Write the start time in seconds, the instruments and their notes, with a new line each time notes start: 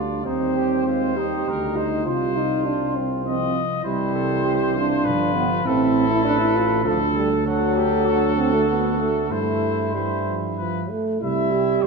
Already playing: tuba D2, trombone G3, french horn D4, flugelhorn F4, trumpet D5
0.25 tuba D#2, french horn C4, flugelhorn D#4, trumpet C5
0.55 flugelhorn G4
0.86 trombone G#3, flugelhorn F4, trumpet C5
1.16 trombone G3, flugelhorn D#4, french horn G4
1.47 tuba D2, trumpet A#4
1.76 french horn D#4, trumpet C5
2.06 tuba C2, trombone G3, french horn F4, flugelhorn F4, trumpet C5
2.36 french horn D#4
2.66 french horn D4
2.95 french horn C4
3.25 trombone F3, french horn C4, trumpet D#5
3.84 tuba C2, trombone E3, french horn G3, flugelhorn E4, trumpet C5
4.14 flugelhorn A4
4.45 flugelhorn G4
4.76 french horn D4, flugelhorn F4
5.05 tuba G1, trombone F3, trumpet B4
5.36 french horn B3
5.65 tuba A1, trombone E3, french horn C4, flugelhorn E4, trumpet A4
6.10 french horn E4
6.24 french horn D4, flugelhorn B4
6.40 french horn E4
6.55 french horn F4
6.84 tuba D2, trombone D3, french horn F3, trumpet A4, flugelhorn A4
7.16 french horn G3
7.46 trombone D3, french horn F#3, flugelhorn F#4, trumpet A4
7.77 flugelhorn G4
8.06 flugelhorn F#4
8.38 french horn C4
8.53 french horn A3
8.68 french horn B3
9.00 french horn A3
9.31 tuba G2, trombone E3, french horn A3, flugelhorn E4, trumpet C5
9.94 trombone E3, french horn G3, trumpet C5
10.27 trombone F3
10.57 trombone F3, trumpet B4
10.90 trombone A3
11.20 tuba C2, trombone G3, french horn E4, flugelhorn E4, trumpet E5
11.52 french horn G4
11.83 tuba E2, flugelhorn G4, trumpet C5